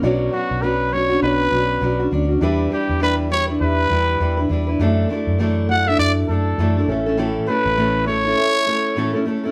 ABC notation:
X:1
M:4/4
L:1/16
Q:"Swing 16ths" 1/4=101
K:Bm
V:1 name="Trumpet"
z2 F2 B2 c2 B6 z2 | z2 G2 B2 c2 B6 z2 | z6 f e d2 A4 z2 | z2 B4 c8 z2 |]
V:2 name="Felt piano"
[B,Dc]6 z2 [B,Dc]6 z2 | [DGe]6 z2 [DGe]6 z2 | [DFe]6 z2 [DFe]6 [CAe]2- | [CAe]4 z4 [CAe]6 z2 |]
V:3 name="Steel-string acoustic guitar"
[B,,F,CDF]2 [F,CDF]2 [B,,F,CDF]2 [F,CDF] [CDF]3 [F,CDF]2 [B,,F,CDF] [CDF] [F,CDF] [CDF] | [E,G,DEB]2 [G,DEB]2 [E,G,DEB]2 [G,DEB] [DEB]3 [G,DEB]2 [E,G,DEB] [DEB] [G,DEB] [DEB] | [F,,E,A,DEA]2 [A,DEA]2 [F,,E,A,DEA]2 [A,DEA] [A,DEA]3 [A,DEA]2 [F,,E,A,DEA] [A,DEA] [A,CEA] [A,CEA] | [A,,E,A,CEA]2 [A,CEA]2 [A,,E,A,CEA]2 [A,CEA] [A,CEA]3 [A,CEA]2 [A,,E,A,CEA] [A,CEA] [A,CEA] [A,CEA] |]
V:4 name="Fingered electric bass" clef=bass
B,,,2 z B,,,4- B,,, B,,,2 B,,,2 B,,,2 D,,2 | E,,2 z E,,4- E,, E,,2 E,,2 E,,2 E,,2 | F,,2 z F,,4- F,, F,,2 F,,2 F,,2 A,,,2- | A,,,2 z A,,,4- A,,, z8 |]